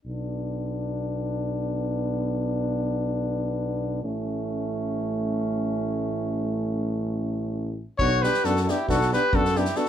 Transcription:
0.05 3.99 B1 medium
0.05 4.00 B3 soft
0.05 3.99 D4 soft
4.03 7.83 A1 medium
4.03 7.79 A3 medium
4.03 7.79 C#4 medium
7.99 8.24 B1 medium
7.99 8.09 B3 medium
7.99 8.09 D4 soft
7.99 8.25 F#4 medium
7.99 8.24 C#5 loud
7.99 kick medium
8.22 8.31 B3 soft
8.22 8.31 D4 soft
8.22 8.46 G4 medium
8.22 8.47 B4 medium
8.22 snare soft
8.33 snare soft
8.44 8.69 F#2 medium
8.44 8.54 B3 medium
8.44 8.54 D4 medium
8.44 8.63 F#4 medium
8.44 8.61 A4 medium
8.44 snare soft
8.56 snare soft
8.61 8.68 F#4 medium
8.61 8.72 A4 medium
8.66 8.76 B3 soft
8.66 8.77 D4 medium
8.66 8.88 E4 medium
8.66 8.89 G4 medium
8.66 snare soft
8.87 9.13 B1 medium
8.87 8.97 B3 medium
8.87 8.98 D4 medium
8.87 9.10 F#4 medium
8.87 9.11 A4 medium
8.87 kick medium
8.87 snare soft
9.01 snare soft
9.13 9.21 B3 medium
9.13 9.21 D4 medium
9.13 9.35 G4 medium
9.13 9.37 B4 medium
9.13 snare soft
9.33 9.68 F#2 medium
9.33 9.43 B3 medium
9.33 9.43 D4 medium
9.33 9.58 F#4 medium
9.33 9.59 A4 medium
9.33 kick medium
9.45 snare soft
9.55 9.64 B3 medium
9.55 9.64 D4 medium
9.55 9.78 E4 medium
9.55 9.78 G4 medium
9.55 snare soft
9.65 snare soft
9.75 9.84 B3 medium
9.75 9.84 D4 medium
9.75 9.89 F#4 medium
9.75 9.89 A4 medium
9.75 snare soft
9.85 snare soft

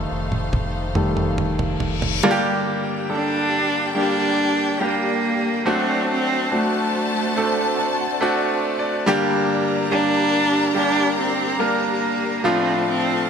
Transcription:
0.00 0.95 D#3 soft
0.00 0.95 G3 soft
0.00 0.96 A3 medium
0.00 2.20 D#4 medium
0.00 2.20 A4 medium
0.00 2.21 C5 medium
0.00 2.20 F5 medium
0.11 0.50 F1 medium
0.32 mid tom medium
0.53 1.77 F1 loud
0.53 kick medium
0.53 mid tom medium
0.53 reverse cymbal medium
0.95 1.34 D#3 soft
0.95 1.34 G3 soft
0.95 1.35 A3 soft
0.95 mid tom medium
1.17 mid tom medium
1.38 mid tom medium
1.59 floor tom medium
1.80 2.21 F1 medium
1.80 floor tom medium
2.02 floor tom medium
2.23 3.49 G2 medium
2.23 3.49 D3 medium
2.23 3.06 G3 loud
2.23 3.06 A#3 loud
2.23 5.63 A#3 medium
2.23 3.06 D4 loud
2.23 2.31 F4 loud
2.23 5.63 G4 medium
2.23 13.30 D5 medium
2.23 5.63 G5 medium
2.31 3.09 G4 loud
3.09 3.91 G3 medium
3.09 3.92 A#3 medium
3.09 3.92 D4 medium
3.09 3.93 D4 loud
3.09 3.92 A4 medium
3.95 4.76 G3 medium
3.95 4.77 A#3 medium
3.95 4.77 D4 medium
3.95 4.85 D4 loud
3.95 4.77 G4 medium
4.80 5.62 G3 medium
4.80 5.62 A#3 medium
4.80 5.71 A#3 loud
4.80 5.62 D4 medium
4.80 5.62 G4 medium
5.66 6.90 F#3 medium
5.66 6.47 A3 loud
5.66 6.47 C4 medium
5.66 6.11 C4 loud
5.66 6.48 D4 loud
5.66 6.48 F#4 loud
5.66 9.03 F#4 medium
5.66 9.03 C5 medium
5.66 9.03 A5 loud
6.12 6.56 C4 loud
6.52 7.32 A3 medium
6.52 8.22 A3 medium
6.52 7.32 C4 medium
6.52 7.32 D4 medium
6.52 7.33 F#4 medium
7.36 8.17 A3 medium
7.36 8.17 C4 medium
7.36 8.17 D4 medium
7.36 8.17 A4 medium
7.79 7.98 A5 medium
8.01 8.20 F#5 medium
8.21 9.01 A3 loud
8.21 9.02 C4 medium
8.21 9.02 D4 medium
8.21 9.02 F#4 loud
8.21 8.74 D5 medium
8.79 9.05 D5 medium
9.05 10.29 G2 medium
9.05 10.29 D3 medium
9.05 9.86 G3 loud
9.05 9.87 A#3 loud
9.05 9.87 D4 loud
9.05 12.40 G4 medium
9.05 9.87 G4 loud
9.05 12.41 A#4 medium
9.05 12.41 A#5 loud
9.91 10.71 G3 medium
9.91 10.71 A#3 medium
9.91 10.71 D4 loud
9.91 10.72 D4 medium
9.91 10.72 G4 medium
10.74 11.55 G3 medium
10.74 11.55 A#3 medium
10.74 11.56 D4 medium
10.74 11.16 D4 loud
10.74 11.56 G4 medium
11.20 11.63 C4 loud
11.59 12.40 G3 medium
11.59 12.40 A#3 medium
11.59 12.48 A#3 loud
11.59 12.40 D4 medium
11.59 12.40 A#4 loud
12.43 13.30 A2 medium
12.43 13.25 F3 loud
12.43 13.25 A3 medium
12.43 12.88 C4 loud
12.43 13.26 D4 medium
12.43 13.30 F4 medium
12.43 13.26 F4 loud
12.43 13.30 A4 medium
12.43 13.30 A5 loud
12.89 13.30 C4 loud

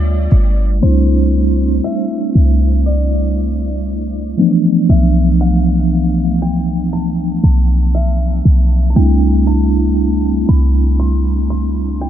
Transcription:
0.00 0.28 D2 loud
0.00 0.27 G3 medium
0.00 0.28 A3 medium
0.00 0.28 B3 medium
0.00 0.28 D4 medium
0.00 0.29 F4 medium
0.00 0.27 D5 medium
0.32 0.80 G1 loud
0.81 1.80 C2 loud
0.81 4.34 G3 medium
0.81 4.34 A3 medium
0.81 4.35 C4 medium
0.81 4.35 D4 medium
0.81 4.36 E4 medium
0.81 1.87 C5 medium
1.84 2.89 E5 loud
2.35 4.34 C2 loud
2.86 4.34 D5 medium
4.37 8.42 E3 medium
4.37 8.41 F3 medium
4.37 8.41 A3 medium
4.37 8.42 B3 medium
4.37 8.42 D4 medium
4.89 7.39 B1 loud
4.89 5.42 E5 medium
5.41 6.45 F5 medium
6.42 6.94 G5 medium
6.93 7.04 A5 medium
7.44 8.41 B1 loud
7.44 7.96 A5 medium
7.95 8.71 E5 medium
8.45 8.94 B1 loud
8.90 8.96 A5 medium
8.95 10.45 C2 loud
8.95 12.10 G3 medium
8.95 12.10 A3 medium
8.95 12.10 C4 medium
8.95 12.10 D4 medium
8.95 12.10 E4 medium
8.95 9.48 G5 medium
9.47 10.52 A5 loud
10.49 12.10 C2 loud
10.49 11.01 B5 loud
11.00 11.49 C6 loud
11.50 11.62 C6 loud
12.01 12.10 G5 loud

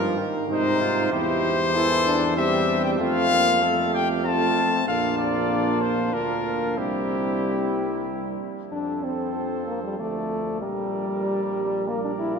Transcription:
0.00 0.21 G2 medium
0.00 0.20 F3 medium
0.00 0.23 D#4 medium
0.00 0.29 F4 medium
0.00 0.21 A#4 loud
0.18 0.52 D#3 medium
0.50 1.14 G#2 medium
0.50 1.48 C3 medium
0.50 0.82 D#4 medium
0.50 1.15 D#4 medium
0.50 1.09 C5 loud
0.81 1.14 F4 medium
1.12 2.99 E2 medium
1.12 1.74 E4 medium
1.12 1.76 G4 medium
1.12 2.35 C5 loud
1.74 2.33 E3 medium
1.74 1.89 E4 medium
1.74 2.38 A4 medium
2.06 2.39 D4 medium
2.37 3.01 G3 medium
2.37 4.24 C4 medium
2.37 2.99 G4 medium
2.37 2.83 E5 loud
2.85 2.92 G5 medium
2.99 4.84 F2 medium
2.99 3.31 A3 medium
2.99 3.64 F4 medium
2.99 3.91 F5 loud
3.31 3.64 A#3 medium
3.63 4.24 A3 medium
3.63 3.96 A4 medium
3.94 4.27 G4 medium
3.94 4.08 G5 loud
4.25 4.86 A3 medium
4.25 4.86 C4 medium
4.25 4.87 F4 medium
4.25 4.86 A5 loud
4.87 6.10 A#1 medium
4.87 6.10 A#3 medium
4.87 6.09 D4 medium
4.87 6.10 F4 medium
4.87 5.18 F5 loud
5.19 5.83 D5 medium
5.82 6.15 C5 medium
6.13 6.77 D2 medium
6.13 6.80 A#3 medium
6.13 6.79 D4 medium
6.13 6.79 F4 medium
6.13 6.79 A#4 medium
6.78 8.37 C2 medium
6.78 8.40 G3 medium
6.78 8.40 C4 medium
6.78 8.40 E4 medium
6.78 8.40 G4 medium
8.72 9.95 F2 soft
8.72 9.95 F3 medium
8.72 9.05 D4 medium
8.72 9.95 A4 soft
8.72 10.01 C5 soft
9.03 9.66 C4 medium
9.67 9.83 A#3 medium
9.83 9.98 G3 medium
9.98 10.64 D2 soft
9.98 10.63 F3 soft
9.98 10.61 A3 medium
9.98 10.63 A4 soft
9.98 10.62 D5 soft
10.61 12.39 A#1 soft
10.61 11.87 G3 soft
10.61 11.89 G3 medium
10.61 11.87 A#4 soft
10.61 11.86 D5 soft
11.88 12.39 G3 soft
11.88 12.03 A#3 medium
11.88 12.39 A#4 soft
11.88 12.39 D5 soft
12.05 12.11 D4 medium
12.19 12.37 E4 medium
12.35 12.39 F4 medium

